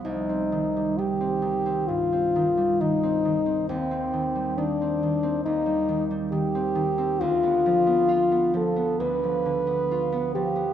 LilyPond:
<<
  \new Staff \with { instrumentName = "French horn" } { \time 4/4 \key c \minor \tempo 4 = 67 ees'4 g'4 f'4 ees'4 | c'4 d'4 ees'8 r8 g'4 | f'4. a'8 b'4. g'8 | }
  \new Staff \with { instrumentName = "Harp" } { \clef bass \time 4/4 \key c \minor <c, g>16 c'16 ees16 g16 ees16 c'16 ees16 c'16 g,16 c'16 ees16 g16 ees16 c'16 ees16 c'16 | ees,16 c'16 ees16 g16 ees16 c'16 ees16 c'16 ees,16 g16 ees16 g16 ees16 c'16 ees16 c'16 | d,16 b16 f16 b16 f'16 b16 f16 b16 d,16 f16 d16 b16 f'16 b16 f16 b16 | }
>>